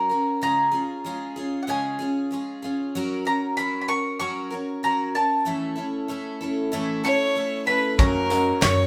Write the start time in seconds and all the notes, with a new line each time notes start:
Already playing: F#3 C#4 A#5
0.09 C#4 F#4 A#4
0.41 C#3 G#3 C#4 F4 G#4 A#5
0.72 C#4 F4 G#4
1.04 G#3 C#4 F4 G#4
1.36 C#4 F4 G#4
1.63 F#5
1.67 C#3 G#3 C#4 F4 G#4 G#5
1.99 C#4 F4 G#4
2.31 G#3 C#4 F4 G#4
2.62 C#4 F4 G#4
2.95 F#3 C#4 F#4 A#4
3.25 C#4 F#4 A#4 A#5
3.57 F#3 C#4 F#4 A#4 B5
3.81 B5
3.88 C#4 F#4 A#4 C#6
4.20 F#3 C#4 F#4 A#4 C#6
4.50 C#4 F#4 A#4
4.83 F#3 C#4 F#4 A#4 A#5
5.15 C#4 F#4 A#4 A5
5.45 A2 E3 A3 C#4 E4 A4
5.76 A3 C#4 E4 A4
6.08 A3 C#4 E4 A4
6.41 A3 C#4 E4 A4
6.72 A2 E3 A3 C#4 E4 A4
7.04 A3 C#4 E4 A4 C#5 C#6
7.35 A3 C#4 E4 A4
7.66 A3 C#4 E4 A4 B4 B5
7.98 F#1 F#2 F#3 A#3 C#4 F#4 A#4 C#5 A#5, kick, snare
8.30 F#3 A#3 C#4 F#4 A#4 D#5, snare, tambourine
8.61 F#2 F#3 A#3 C#4 F#4 A#4 C#5 C#6, snare, clap, tambourine